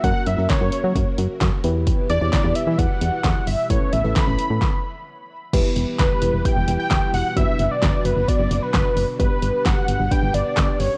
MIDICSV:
0, 0, Header, 1, 6, 480
1, 0, Start_track
1, 0, Tempo, 458015
1, 39, Time_signature, 4, 2, 24, 8
1, 11503, End_track
2, 0, Start_track
2, 0, Title_t, "Analog synth lead"
2, 0, Program_c, 0, 81
2, 41, Note_on_c, 0, 78, 108
2, 279, Note_on_c, 0, 76, 97
2, 295, Note_off_c, 0, 78, 0
2, 513, Note_off_c, 0, 76, 0
2, 519, Note_on_c, 0, 73, 86
2, 1197, Note_off_c, 0, 73, 0
2, 2198, Note_on_c, 0, 74, 91
2, 2676, Note_on_c, 0, 76, 91
2, 2692, Note_off_c, 0, 74, 0
2, 2917, Note_on_c, 0, 78, 102
2, 2933, Note_off_c, 0, 76, 0
2, 3636, Note_on_c, 0, 76, 95
2, 3652, Note_off_c, 0, 78, 0
2, 3877, Note_on_c, 0, 73, 99
2, 3893, Note_off_c, 0, 76, 0
2, 4115, Note_on_c, 0, 76, 98
2, 4131, Note_off_c, 0, 73, 0
2, 4354, Note_on_c, 0, 83, 109
2, 4370, Note_off_c, 0, 76, 0
2, 5077, Note_off_c, 0, 83, 0
2, 6281, Note_on_c, 0, 71, 100
2, 6762, Note_on_c, 0, 79, 116
2, 6778, Note_off_c, 0, 71, 0
2, 7115, Note_off_c, 0, 79, 0
2, 7121, Note_on_c, 0, 79, 107
2, 7455, Note_off_c, 0, 79, 0
2, 7483, Note_on_c, 0, 78, 107
2, 7704, Note_off_c, 0, 78, 0
2, 7721, Note_on_c, 0, 76, 112
2, 8083, Note_on_c, 0, 74, 100
2, 8098, Note_off_c, 0, 76, 0
2, 8440, Note_on_c, 0, 71, 93
2, 8456, Note_off_c, 0, 74, 0
2, 8678, Note_on_c, 0, 74, 104
2, 8694, Note_off_c, 0, 71, 0
2, 9039, Note_on_c, 0, 71, 86
2, 9055, Note_off_c, 0, 74, 0
2, 9151, Note_off_c, 0, 71, 0
2, 9157, Note_on_c, 0, 71, 95
2, 9493, Note_off_c, 0, 71, 0
2, 9638, Note_on_c, 0, 71, 97
2, 10118, Note_on_c, 0, 78, 105
2, 10134, Note_off_c, 0, 71, 0
2, 10598, Note_on_c, 0, 79, 111
2, 10614, Note_off_c, 0, 78, 0
2, 10838, Note_on_c, 0, 74, 104
2, 10853, Note_off_c, 0, 79, 0
2, 11315, Note_on_c, 0, 73, 98
2, 11331, Note_off_c, 0, 74, 0
2, 11503, Note_off_c, 0, 73, 0
2, 11503, End_track
3, 0, Start_track
3, 0, Title_t, "FM electric piano"
3, 0, Program_c, 1, 5
3, 41, Note_on_c, 1, 58, 72
3, 41, Note_on_c, 1, 61, 67
3, 41, Note_on_c, 1, 66, 69
3, 41, Note_on_c, 1, 70, 85
3, 325, Note_off_c, 1, 58, 0
3, 325, Note_off_c, 1, 61, 0
3, 325, Note_off_c, 1, 66, 0
3, 325, Note_off_c, 1, 70, 0
3, 401, Note_on_c, 1, 58, 73
3, 402, Note_on_c, 1, 61, 67
3, 402, Note_on_c, 1, 66, 66
3, 402, Note_on_c, 1, 70, 81
3, 590, Note_off_c, 1, 58, 0
3, 590, Note_off_c, 1, 66, 0
3, 590, Note_off_c, 1, 70, 0
3, 591, Note_off_c, 1, 61, 0
3, 642, Note_on_c, 1, 58, 75
3, 642, Note_on_c, 1, 66, 66
3, 642, Note_on_c, 1, 70, 81
3, 643, Note_on_c, 1, 61, 68
3, 1400, Note_off_c, 1, 58, 0
3, 1400, Note_off_c, 1, 66, 0
3, 1400, Note_off_c, 1, 70, 0
3, 1401, Note_off_c, 1, 61, 0
3, 1721, Note_on_c, 1, 64, 83
3, 1721, Note_on_c, 1, 71, 103
3, 1722, Note_on_c, 1, 59, 94
3, 1722, Note_on_c, 1, 67, 87
3, 2200, Note_off_c, 1, 59, 0
3, 2200, Note_off_c, 1, 64, 0
3, 2200, Note_off_c, 1, 67, 0
3, 2200, Note_off_c, 1, 71, 0
3, 2320, Note_on_c, 1, 64, 67
3, 2320, Note_on_c, 1, 67, 66
3, 2320, Note_on_c, 1, 73, 85
3, 2321, Note_on_c, 1, 59, 75
3, 2510, Note_off_c, 1, 59, 0
3, 2510, Note_off_c, 1, 64, 0
3, 2510, Note_off_c, 1, 67, 0
3, 2510, Note_off_c, 1, 73, 0
3, 2559, Note_on_c, 1, 64, 72
3, 2560, Note_on_c, 1, 59, 74
3, 2560, Note_on_c, 1, 67, 71
3, 2560, Note_on_c, 1, 71, 82
3, 3319, Note_off_c, 1, 59, 0
3, 3319, Note_off_c, 1, 64, 0
3, 3319, Note_off_c, 1, 67, 0
3, 3319, Note_off_c, 1, 71, 0
3, 3878, Note_on_c, 1, 61, 76
3, 3878, Note_on_c, 1, 64, 70
3, 3878, Note_on_c, 1, 71, 85
3, 3879, Note_on_c, 1, 69, 71
3, 4163, Note_off_c, 1, 61, 0
3, 4163, Note_off_c, 1, 64, 0
3, 4163, Note_off_c, 1, 71, 0
3, 4164, Note_off_c, 1, 69, 0
3, 4239, Note_on_c, 1, 69, 69
3, 4239, Note_on_c, 1, 71, 86
3, 4240, Note_on_c, 1, 61, 74
3, 4240, Note_on_c, 1, 64, 70
3, 4429, Note_off_c, 1, 61, 0
3, 4429, Note_off_c, 1, 69, 0
3, 4429, Note_off_c, 1, 71, 0
3, 4430, Note_off_c, 1, 64, 0
3, 4480, Note_on_c, 1, 61, 75
3, 4480, Note_on_c, 1, 64, 68
3, 4480, Note_on_c, 1, 69, 71
3, 4480, Note_on_c, 1, 71, 84
3, 4839, Note_off_c, 1, 71, 0
3, 4840, Note_off_c, 1, 61, 0
3, 4840, Note_off_c, 1, 64, 0
3, 4840, Note_off_c, 1, 69, 0
3, 5799, Note_on_c, 1, 64, 86
3, 5799, Note_on_c, 1, 71, 102
3, 5800, Note_on_c, 1, 59, 92
3, 5800, Note_on_c, 1, 67, 83
3, 6559, Note_off_c, 1, 59, 0
3, 6559, Note_off_c, 1, 64, 0
3, 6559, Note_off_c, 1, 67, 0
3, 6559, Note_off_c, 1, 71, 0
3, 6760, Note_on_c, 1, 71, 84
3, 6761, Note_on_c, 1, 59, 74
3, 6761, Note_on_c, 1, 64, 69
3, 6761, Note_on_c, 1, 67, 68
3, 7520, Note_off_c, 1, 59, 0
3, 7520, Note_off_c, 1, 64, 0
3, 7520, Note_off_c, 1, 67, 0
3, 7520, Note_off_c, 1, 71, 0
3, 7718, Note_on_c, 1, 59, 77
3, 7718, Note_on_c, 1, 71, 85
3, 7719, Note_on_c, 1, 62, 70
3, 7719, Note_on_c, 1, 66, 69
3, 8478, Note_off_c, 1, 59, 0
3, 8478, Note_off_c, 1, 71, 0
3, 8479, Note_off_c, 1, 62, 0
3, 8479, Note_off_c, 1, 66, 0
3, 8678, Note_on_c, 1, 59, 72
3, 8678, Note_on_c, 1, 71, 80
3, 8679, Note_on_c, 1, 62, 69
3, 8679, Note_on_c, 1, 66, 70
3, 9438, Note_off_c, 1, 71, 0
3, 9439, Note_off_c, 1, 59, 0
3, 9439, Note_off_c, 1, 62, 0
3, 9439, Note_off_c, 1, 66, 0
3, 9635, Note_on_c, 1, 62, 70
3, 9635, Note_on_c, 1, 67, 70
3, 9635, Note_on_c, 1, 71, 83
3, 9636, Note_on_c, 1, 59, 78
3, 10397, Note_off_c, 1, 59, 0
3, 10397, Note_off_c, 1, 62, 0
3, 10397, Note_off_c, 1, 67, 0
3, 10397, Note_off_c, 1, 71, 0
3, 10596, Note_on_c, 1, 59, 73
3, 10596, Note_on_c, 1, 62, 70
3, 10597, Note_on_c, 1, 67, 69
3, 10597, Note_on_c, 1, 71, 81
3, 11357, Note_off_c, 1, 59, 0
3, 11357, Note_off_c, 1, 62, 0
3, 11358, Note_off_c, 1, 67, 0
3, 11358, Note_off_c, 1, 71, 0
3, 11503, End_track
4, 0, Start_track
4, 0, Title_t, "String machine"
4, 0, Program_c, 2, 50
4, 0, Note_on_c, 2, 49, 76
4, 0, Note_on_c, 2, 54, 70
4, 0, Note_on_c, 2, 58, 70
4, 0, Note_on_c, 2, 66, 70
4, 0, Note_on_c, 2, 70, 84
4, 1682, Note_off_c, 2, 49, 0
4, 1682, Note_off_c, 2, 58, 0
4, 1683, Note_off_c, 2, 66, 0
4, 1683, Note_off_c, 2, 70, 0
4, 1684, Note_off_c, 2, 54, 0
4, 1719, Note_on_c, 2, 52, 72
4, 1719, Note_on_c, 2, 55, 71
4, 1719, Note_on_c, 2, 64, 68
4, 1719, Note_on_c, 2, 67, 85
4, 1720, Note_on_c, 2, 47, 78
4, 3857, Note_off_c, 2, 55, 0
4, 3857, Note_off_c, 2, 67, 0
4, 3858, Note_off_c, 2, 47, 0
4, 3881, Note_on_c, 2, 49, 74
4, 3881, Note_on_c, 2, 57, 69
4, 3881, Note_on_c, 2, 59, 68
4, 4808, Note_off_c, 2, 52, 0
4, 4808, Note_off_c, 2, 64, 0
4, 4830, Note_off_c, 2, 49, 0
4, 4830, Note_off_c, 2, 57, 0
4, 4831, Note_off_c, 2, 59, 0
4, 5798, Note_on_c, 2, 52, 74
4, 5798, Note_on_c, 2, 64, 72
4, 5798, Note_on_c, 2, 67, 86
4, 5799, Note_on_c, 2, 47, 78
4, 5800, Note_on_c, 2, 55, 72
4, 7699, Note_off_c, 2, 52, 0
4, 7699, Note_off_c, 2, 64, 0
4, 7700, Note_off_c, 2, 67, 0
4, 7701, Note_off_c, 2, 55, 0
4, 7719, Note_on_c, 2, 54, 71
4, 7720, Note_on_c, 2, 66, 86
4, 7721, Note_on_c, 2, 50, 73
4, 7721, Note_on_c, 2, 62, 73
4, 9620, Note_off_c, 2, 54, 0
4, 9620, Note_off_c, 2, 66, 0
4, 9621, Note_off_c, 2, 50, 0
4, 9621, Note_off_c, 2, 62, 0
4, 9636, Note_on_c, 2, 55, 71
4, 9638, Note_on_c, 2, 50, 74
4, 9638, Note_on_c, 2, 62, 73
4, 9638, Note_on_c, 2, 67, 87
4, 11503, Note_off_c, 2, 47, 0
4, 11503, Note_off_c, 2, 50, 0
4, 11503, Note_off_c, 2, 55, 0
4, 11503, Note_off_c, 2, 62, 0
4, 11503, Note_off_c, 2, 67, 0
4, 11503, End_track
5, 0, Start_track
5, 0, Title_t, "FM bass"
5, 0, Program_c, 3, 39
5, 40, Note_on_c, 3, 42, 105
5, 139, Note_off_c, 3, 42, 0
5, 279, Note_on_c, 3, 42, 102
5, 379, Note_off_c, 3, 42, 0
5, 401, Note_on_c, 3, 42, 90
5, 500, Note_off_c, 3, 42, 0
5, 640, Note_on_c, 3, 42, 95
5, 739, Note_off_c, 3, 42, 0
5, 880, Note_on_c, 3, 54, 96
5, 979, Note_off_c, 3, 54, 0
5, 1000, Note_on_c, 3, 42, 102
5, 1099, Note_off_c, 3, 42, 0
5, 1239, Note_on_c, 3, 42, 105
5, 1339, Note_off_c, 3, 42, 0
5, 1479, Note_on_c, 3, 42, 102
5, 1579, Note_off_c, 3, 42, 0
5, 1719, Note_on_c, 3, 40, 102
5, 2018, Note_off_c, 3, 40, 0
5, 2199, Note_on_c, 3, 40, 103
5, 2299, Note_off_c, 3, 40, 0
5, 2320, Note_on_c, 3, 40, 101
5, 2419, Note_off_c, 3, 40, 0
5, 2560, Note_on_c, 3, 40, 96
5, 2659, Note_off_c, 3, 40, 0
5, 2799, Note_on_c, 3, 52, 96
5, 2899, Note_off_c, 3, 52, 0
5, 2920, Note_on_c, 3, 40, 100
5, 3019, Note_off_c, 3, 40, 0
5, 3159, Note_on_c, 3, 40, 98
5, 3259, Note_off_c, 3, 40, 0
5, 3398, Note_on_c, 3, 40, 109
5, 3498, Note_off_c, 3, 40, 0
5, 3639, Note_on_c, 3, 31, 92
5, 3739, Note_off_c, 3, 31, 0
5, 3878, Note_on_c, 3, 33, 108
5, 3978, Note_off_c, 3, 33, 0
5, 4119, Note_on_c, 3, 33, 100
5, 4219, Note_off_c, 3, 33, 0
5, 4239, Note_on_c, 3, 33, 102
5, 4339, Note_off_c, 3, 33, 0
5, 4480, Note_on_c, 3, 33, 99
5, 4579, Note_off_c, 3, 33, 0
5, 4719, Note_on_c, 3, 45, 94
5, 4819, Note_off_c, 3, 45, 0
5, 5799, Note_on_c, 3, 28, 102
5, 5899, Note_off_c, 3, 28, 0
5, 6040, Note_on_c, 3, 28, 98
5, 6139, Note_off_c, 3, 28, 0
5, 6281, Note_on_c, 3, 28, 104
5, 6380, Note_off_c, 3, 28, 0
5, 6519, Note_on_c, 3, 28, 101
5, 6619, Note_off_c, 3, 28, 0
5, 6639, Note_on_c, 3, 28, 94
5, 6739, Note_off_c, 3, 28, 0
5, 6880, Note_on_c, 3, 28, 100
5, 6979, Note_off_c, 3, 28, 0
5, 7001, Note_on_c, 3, 28, 107
5, 7100, Note_off_c, 3, 28, 0
5, 7239, Note_on_c, 3, 28, 99
5, 7339, Note_off_c, 3, 28, 0
5, 7480, Note_on_c, 3, 28, 97
5, 7579, Note_off_c, 3, 28, 0
5, 7720, Note_on_c, 3, 30, 114
5, 7819, Note_off_c, 3, 30, 0
5, 7959, Note_on_c, 3, 30, 104
5, 8059, Note_off_c, 3, 30, 0
5, 8201, Note_on_c, 3, 30, 114
5, 8300, Note_off_c, 3, 30, 0
5, 8437, Note_on_c, 3, 30, 101
5, 8538, Note_off_c, 3, 30, 0
5, 8557, Note_on_c, 3, 30, 103
5, 8658, Note_off_c, 3, 30, 0
5, 8798, Note_on_c, 3, 30, 94
5, 8898, Note_off_c, 3, 30, 0
5, 8918, Note_on_c, 3, 30, 109
5, 9018, Note_off_c, 3, 30, 0
5, 9159, Note_on_c, 3, 30, 102
5, 9259, Note_off_c, 3, 30, 0
5, 9397, Note_on_c, 3, 30, 94
5, 9498, Note_off_c, 3, 30, 0
5, 9638, Note_on_c, 3, 31, 108
5, 9738, Note_off_c, 3, 31, 0
5, 9877, Note_on_c, 3, 31, 99
5, 9978, Note_off_c, 3, 31, 0
5, 10120, Note_on_c, 3, 31, 102
5, 10219, Note_off_c, 3, 31, 0
5, 10358, Note_on_c, 3, 31, 97
5, 10458, Note_off_c, 3, 31, 0
5, 10478, Note_on_c, 3, 31, 95
5, 10578, Note_off_c, 3, 31, 0
5, 10718, Note_on_c, 3, 31, 98
5, 10818, Note_off_c, 3, 31, 0
5, 10838, Note_on_c, 3, 31, 95
5, 10938, Note_off_c, 3, 31, 0
5, 11078, Note_on_c, 3, 31, 114
5, 11178, Note_off_c, 3, 31, 0
5, 11318, Note_on_c, 3, 31, 92
5, 11418, Note_off_c, 3, 31, 0
5, 11503, End_track
6, 0, Start_track
6, 0, Title_t, "Drums"
6, 39, Note_on_c, 9, 36, 110
6, 40, Note_on_c, 9, 42, 68
6, 144, Note_off_c, 9, 36, 0
6, 145, Note_off_c, 9, 42, 0
6, 277, Note_on_c, 9, 42, 61
6, 382, Note_off_c, 9, 42, 0
6, 519, Note_on_c, 9, 42, 76
6, 520, Note_on_c, 9, 38, 108
6, 521, Note_on_c, 9, 36, 113
6, 624, Note_off_c, 9, 42, 0
6, 625, Note_off_c, 9, 38, 0
6, 626, Note_off_c, 9, 36, 0
6, 756, Note_on_c, 9, 42, 75
6, 861, Note_off_c, 9, 42, 0
6, 1000, Note_on_c, 9, 36, 98
6, 1003, Note_on_c, 9, 42, 73
6, 1105, Note_off_c, 9, 36, 0
6, 1107, Note_off_c, 9, 42, 0
6, 1238, Note_on_c, 9, 42, 77
6, 1343, Note_off_c, 9, 42, 0
6, 1477, Note_on_c, 9, 42, 63
6, 1478, Note_on_c, 9, 38, 111
6, 1479, Note_on_c, 9, 36, 108
6, 1582, Note_off_c, 9, 42, 0
6, 1583, Note_off_c, 9, 38, 0
6, 1584, Note_off_c, 9, 36, 0
6, 1717, Note_on_c, 9, 42, 71
6, 1822, Note_off_c, 9, 42, 0
6, 1958, Note_on_c, 9, 42, 73
6, 1959, Note_on_c, 9, 36, 112
6, 2063, Note_off_c, 9, 36, 0
6, 2063, Note_off_c, 9, 42, 0
6, 2197, Note_on_c, 9, 42, 62
6, 2302, Note_off_c, 9, 42, 0
6, 2439, Note_on_c, 9, 42, 74
6, 2440, Note_on_c, 9, 38, 107
6, 2441, Note_on_c, 9, 36, 111
6, 2544, Note_off_c, 9, 42, 0
6, 2545, Note_off_c, 9, 36, 0
6, 2545, Note_off_c, 9, 38, 0
6, 2676, Note_on_c, 9, 42, 75
6, 2780, Note_off_c, 9, 42, 0
6, 2919, Note_on_c, 9, 36, 103
6, 2922, Note_on_c, 9, 42, 75
6, 3024, Note_off_c, 9, 36, 0
6, 3027, Note_off_c, 9, 42, 0
6, 3158, Note_on_c, 9, 42, 76
6, 3263, Note_off_c, 9, 42, 0
6, 3396, Note_on_c, 9, 42, 62
6, 3398, Note_on_c, 9, 36, 106
6, 3398, Note_on_c, 9, 38, 113
6, 3501, Note_off_c, 9, 42, 0
6, 3502, Note_off_c, 9, 38, 0
6, 3503, Note_off_c, 9, 36, 0
6, 3638, Note_on_c, 9, 46, 71
6, 3743, Note_off_c, 9, 46, 0
6, 3878, Note_on_c, 9, 36, 113
6, 3878, Note_on_c, 9, 42, 72
6, 3983, Note_off_c, 9, 36, 0
6, 3983, Note_off_c, 9, 42, 0
6, 4116, Note_on_c, 9, 42, 64
6, 4221, Note_off_c, 9, 42, 0
6, 4358, Note_on_c, 9, 42, 76
6, 4359, Note_on_c, 9, 38, 110
6, 4360, Note_on_c, 9, 36, 113
6, 4463, Note_off_c, 9, 42, 0
6, 4464, Note_off_c, 9, 38, 0
6, 4465, Note_off_c, 9, 36, 0
6, 4596, Note_on_c, 9, 42, 73
6, 4701, Note_off_c, 9, 42, 0
6, 4839, Note_on_c, 9, 36, 103
6, 4839, Note_on_c, 9, 38, 88
6, 4943, Note_off_c, 9, 36, 0
6, 4944, Note_off_c, 9, 38, 0
6, 5799, Note_on_c, 9, 36, 115
6, 5800, Note_on_c, 9, 42, 72
6, 5800, Note_on_c, 9, 49, 94
6, 5904, Note_off_c, 9, 36, 0
6, 5905, Note_off_c, 9, 42, 0
6, 5905, Note_off_c, 9, 49, 0
6, 6036, Note_on_c, 9, 42, 61
6, 6141, Note_off_c, 9, 42, 0
6, 6279, Note_on_c, 9, 42, 77
6, 6280, Note_on_c, 9, 38, 106
6, 6281, Note_on_c, 9, 36, 116
6, 6384, Note_off_c, 9, 42, 0
6, 6385, Note_off_c, 9, 38, 0
6, 6386, Note_off_c, 9, 36, 0
6, 6516, Note_on_c, 9, 42, 74
6, 6621, Note_off_c, 9, 42, 0
6, 6760, Note_on_c, 9, 36, 97
6, 6762, Note_on_c, 9, 42, 78
6, 6865, Note_off_c, 9, 36, 0
6, 6867, Note_off_c, 9, 42, 0
6, 6999, Note_on_c, 9, 42, 81
6, 7104, Note_off_c, 9, 42, 0
6, 7237, Note_on_c, 9, 42, 66
6, 7239, Note_on_c, 9, 36, 106
6, 7239, Note_on_c, 9, 38, 113
6, 7239, Note_on_c, 9, 39, 91
6, 7342, Note_off_c, 9, 42, 0
6, 7343, Note_off_c, 9, 38, 0
6, 7343, Note_off_c, 9, 39, 0
6, 7344, Note_off_c, 9, 36, 0
6, 7480, Note_on_c, 9, 46, 71
6, 7585, Note_off_c, 9, 46, 0
6, 7720, Note_on_c, 9, 36, 114
6, 7721, Note_on_c, 9, 42, 70
6, 7824, Note_off_c, 9, 36, 0
6, 7825, Note_off_c, 9, 42, 0
6, 7956, Note_on_c, 9, 42, 62
6, 8061, Note_off_c, 9, 42, 0
6, 8200, Note_on_c, 9, 42, 76
6, 8201, Note_on_c, 9, 36, 114
6, 8201, Note_on_c, 9, 38, 109
6, 8305, Note_off_c, 9, 42, 0
6, 8306, Note_off_c, 9, 36, 0
6, 8306, Note_off_c, 9, 38, 0
6, 8437, Note_on_c, 9, 42, 75
6, 8542, Note_off_c, 9, 42, 0
6, 8680, Note_on_c, 9, 36, 103
6, 8683, Note_on_c, 9, 42, 75
6, 8785, Note_off_c, 9, 36, 0
6, 8787, Note_off_c, 9, 42, 0
6, 8919, Note_on_c, 9, 42, 80
6, 9023, Note_off_c, 9, 42, 0
6, 9158, Note_on_c, 9, 42, 62
6, 9159, Note_on_c, 9, 36, 108
6, 9159, Note_on_c, 9, 38, 111
6, 9159, Note_on_c, 9, 39, 91
6, 9262, Note_off_c, 9, 42, 0
6, 9264, Note_off_c, 9, 36, 0
6, 9264, Note_off_c, 9, 38, 0
6, 9264, Note_off_c, 9, 39, 0
6, 9398, Note_on_c, 9, 46, 70
6, 9503, Note_off_c, 9, 46, 0
6, 9638, Note_on_c, 9, 36, 111
6, 9639, Note_on_c, 9, 42, 73
6, 9743, Note_off_c, 9, 36, 0
6, 9744, Note_off_c, 9, 42, 0
6, 9876, Note_on_c, 9, 42, 64
6, 9981, Note_off_c, 9, 42, 0
6, 10119, Note_on_c, 9, 42, 76
6, 10120, Note_on_c, 9, 36, 118
6, 10120, Note_on_c, 9, 38, 110
6, 10224, Note_off_c, 9, 42, 0
6, 10225, Note_off_c, 9, 36, 0
6, 10225, Note_off_c, 9, 38, 0
6, 10356, Note_on_c, 9, 42, 75
6, 10461, Note_off_c, 9, 42, 0
6, 10599, Note_on_c, 9, 36, 99
6, 10601, Note_on_c, 9, 42, 75
6, 10703, Note_off_c, 9, 36, 0
6, 10706, Note_off_c, 9, 42, 0
6, 10838, Note_on_c, 9, 42, 76
6, 10943, Note_off_c, 9, 42, 0
6, 11075, Note_on_c, 9, 42, 65
6, 11076, Note_on_c, 9, 38, 112
6, 11076, Note_on_c, 9, 39, 94
6, 11078, Note_on_c, 9, 36, 109
6, 11180, Note_off_c, 9, 42, 0
6, 11181, Note_off_c, 9, 38, 0
6, 11181, Note_off_c, 9, 39, 0
6, 11182, Note_off_c, 9, 36, 0
6, 11317, Note_on_c, 9, 46, 73
6, 11421, Note_off_c, 9, 46, 0
6, 11503, End_track
0, 0, End_of_file